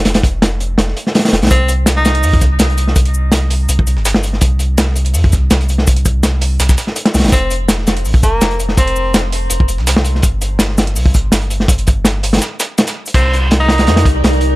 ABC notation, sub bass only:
X:1
M:4/4
L:1/16
Q:1/4=165
K:Fdor
V:1 name="Sub bass" clef=bass
F,,,8 F,,,2 z4 F,,, C,, | C,,8 F,,2 C,,2 C,,4 | C,,8 C,,2 C,, G,,,4- G,,, | C,,8 F,,2 C,,2 C,,4 |
C,,8 C,,2 z4 C,, G,,, | F,,,8 B,,,2 F,,,2 F,,,4 | F,,,8 F,,,2 F,,, C,,4- C,, | G,,,8 C,,2 G,,,2 G,,,4 |
G,,,8 z8 | C,,8 F,,2 C,,2 C,,4 |]